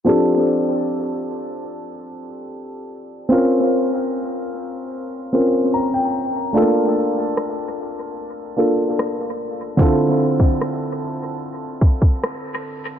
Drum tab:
SD |----------------|----------------|----r-------r---|----r-------r---|
BD |----------------|----------------|----------------|o--o------oo----|